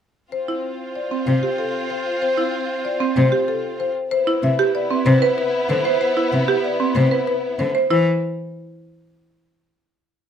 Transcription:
0.32 C4 F4 C5
0.48 E4
0.96 D5
1.11 C4
1.27 C3 C5
1.43 G4
1.58 A4
1.90 C5
2.22 C5
2.37 E4
2.85 D5
3.00 C4
3.17 C3 C5
3.32 G4
3.48 A4
3.80 C5
4.11 B3 E4 B4 C5
4.27 E4
4.43 C3 E5
4.59 G4
4.75 D5
4.91 C4
5.06 C3 C5
5.22 B4
5.38 B4
5.69 D3 C5
5.85 C5
6.01 C5
6.17 E4
6.32 C3 E5
6.48 G4
6.64 D5
6.80 C4
6.95 C3 C5
7.11 B4
7.27 B4
7.59 D3 C5
7.75 C5
7.91 E3 E4 C5

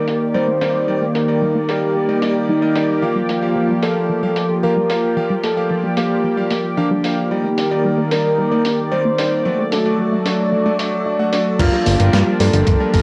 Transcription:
Already playing: D#3 A#3 G4 A#4 D5
0.08 D4, open hi-hat
0.34 G3 D#4 C5 D5
0.48 A#3
0.61 G3 D4 D#4 D5, open hi-hat
0.88 G3 D#4 D5
1.02 A#3
1.15 D4 A#4, open hi-hat
1.28 G3 D#4 D5
1.42 G3
1.55 A#3
1.68 G3 D4 D#4 G4 D5, open hi-hat
1.95 G3
2.09 G3 A#3 D#4 D5
2.22 G3 D4 D#4 D5, open hi-hat
2.49 G3 D#4
2.62 G3 A#3 D#4 D#5
2.76 G3 D4 D#4 D5, open hi-hat
3.02 F3 A#3 F4 G4 F5
3.16 G3
3.29 A#3, open hi-hat
3.42 A#3 G4 F5
3.56 F3
3.69 G3
3.83 A#3 G4 A4 F5, open hi-hat
4.09 F3
4.23 G3 A#3 G4 F5
4.36 A#3, open hi-hat
4.63 F3 A#3 G4 A#4 F5
4.77 G3
4.90 A#3 G4 F5, open hi-hat
5.17 F3 A#3 G4 F5
5.30 G3
5.43 A#3 A4, open hi-hat
5.57 A#3 G4 F5
5.70 F3
5.84 G3
5.97 A#3 G4 F5, open hi-hat
6.24 F3
6.37 G3 A#3 G4 F5
6.51 A#3, open hi-hat
6.77 F3 A#3 D4 G4 F5
6.91 G3
7.04 A#3 G4 F5, open hi-hat
7.31 D#3 G3 A#3 D#4 G4 D5
7.44 A#3
7.58 D4, open hi-hat
7.71 G3 D#4 D5
7.85 G3
7.98 A#3
8.11 G3 D4 D#4 A#4 D5, open hi-hat
8.38 G3
8.52 G3 A#3 D#4 D5
8.65 D4, open hi-hat
8.92 G3 D#4 C5 D5
9.05 A#3
9.18 G3 D4 D#4 D5, open hi-hat
9.45 F#3 A3 F#4 A4 D5
9.59 A3
9.72 D4 A4, open hi-hat
9.85 A3 F#4 D5
9.99 F#3
10.12 A3
10.26 A3 D4 F#4 D5, open hi-hat
10.52 F#3
10.66 A3 F#4 D5
10.79 A3 D4 F#4 D5, open hi-hat
11.06 F#3 D5
11.19 A3 F#4 F#5
11.33 A3 D4 F#4 D5, open hi-hat
11.60 G1 F3 G3 A#3 D4 F4 G4 A#4, kick, closed hi-hat, crash
11.73 G3
11.86 G1 A#3, open hi-hat
12.00 G1 G3 F4 A#4, closed hi-hat
12.13 G2 F3, snare, closed hi-hat
12.27 G3
12.40 G2 G3 A#3 F4 A4, open hi-hat
12.53 G1, closed hi-hat
12.67 G1 F3, kick, closed hi-hat
12.80 G3 F4 A#4
12.94 G1 G3 A#3 F4 A#4, kick, open hi-hat

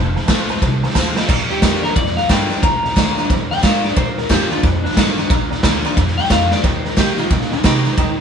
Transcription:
Already playing: F1 F2
0.15 C5 F5 A5, snare
0.27 A1 F3 A3 C4 F4 C5 F5 A5, kick, snare, hi-hat pedal
0.49 C4 F4 C5 F5 A5, snare
0.61 C2 C3 C5 F5 A5, kick, snare
0.83 C5 F5 A5, snare
0.89 snare
0.94 D#2 F3 A3 C4 F4 C5 F5 A5, kick, snare, hi-hat pedal
1.16 C5 F5 A5, snare
1.28 A#1 A#2 D5 F5 A#5, kick, snare, crash
1.49 G4 D5 F5 A#5, snare
1.61 F2 D3 A#3 D4 F4 D5 F5 A#5, kick, snare, hi-hat pedal
1.82 A#4 D5 F5 A#5, snare
1.95 F2 D5 F5 A#5, kick, snare
2.06 snare
2.17 D5 F5 A#5, snare
2.29 G2 D3 A#3 D4 F4 D5 F5 G5 A#5, kick, snare, hi-hat pedal
2.50 D4 F4 D5 F5 A#5, snare
2.62 A#1 A#2 D5 F5 A#5, kick, snare
2.84 D5 F5 A#5, snare
2.96 D2 D3 A#3 D4 F4 D5 F5 A#5, kick, snare, hi-hat pedal
3.17 D4 F4 D5 F5 A#5, snare
3.30 F2 D5 F5 A#5, kick, snare
3.51 D5 F5 G5 A#5, snare
3.58 snare
3.63 G#2 D3 A#3 D4 F4 D5 F5 A#5, kick, snare, hi-hat pedal
3.84 D4 F4 D5 A#5, snare
3.96 A#1 A#2 C5 D5 F5 A#5, kick, snare
4.17 A#4 D5 F5 A#5, snare
4.29 F2 D3 A#3 D4 F4 G4 D5 F5 A#5, kick, snare, hi-hat pedal
4.51 D4 F4 D5 F5 A#5, snare
4.62 F2 D4 D5 F5 A#5, kick, snare
4.84 D4 D5 F5 A#5, snare
4.91 snare
4.96 G2 D3 A#3 D4 F4 D5 F5 A#5, kick, snare, hi-hat pedal
5.17 D4 F4 D5 F5 A#5, snare
5.29 A#1 A#2 D5 F5 A#5, kick, snare
5.50 D5 F5 A#5, snare
5.63 D2 D3 A#3 D4 F4 D5 F5 A#5, kick, snare, hi-hat pedal
5.85 D4 F4 D5 F5 A#5, snare
5.97 F2 C3 D5 F5 A#5, kick, snare
6.08 snare
6.18 D5 F5 G5 A#5, snare
6.24 snare
6.30 F2 D3 D5 F5 A#5, kick, snare, hi-hat pedal
6.51 D5 A#5, snare
6.63 D#2 D#3 C5 D#5 G5 A#5, kick, snare
6.84 A#4 D#5 G5 A#5, snare
6.97 A#2 D#3 A#3 D#4 G4 D#5 G5 A#5, kick, snare, hi-hat pedal
7.18 D#4 F4 G4 D#5 G5 A#5, snare
7.30 A#2 D4 D#5 G5 A#5, kick, snare
7.41 snare
7.51 D#4 D#5 G5 A#5, snare
7.64 C3 D#3 A#3 D#4 G4 D#5 G5 A#5, kick, snare, hi-hat pedal
7.85 D#4 G4 D#5 G5 A#5, snare
7.97 D#2 D#3 D#5 G5 A#5, kick, snare

